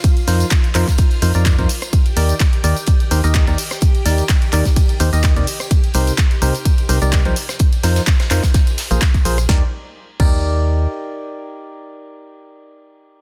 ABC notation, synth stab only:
X:1
M:4/4
L:1/16
Q:"Swing 16ths" 1/4=127
K:Eb
V:1 name="Synth stab"
z2 [F,EFBc]2 z2 [F,EFBc] z3 [F,EFBc] [F,EFBd]2 [F,EFBc] z2 | z2 [E,EGBd]2 z2 [E,EGBd] z3 [E,EGBc] [E,EGBe]2 [E,EGBd] z2 | z2 [E,EGBd]2 z2 [E,EGBd] z3 [E,EGBc] [E,EGBe]2 [C,EGBd] z2 | z2 [C,EGBc]2 z2 [C,EGBc] z3 [C,EGBc] [C,EGBd]2 [F,EGBc] z2 |
z2 [F,EFBc]2 z2 [EFBc] z4 [B,FABc] z2 [FABc] z | [EGBd] z4 z [EGBd]8- [EGBd]2- | [EGBd]16 |]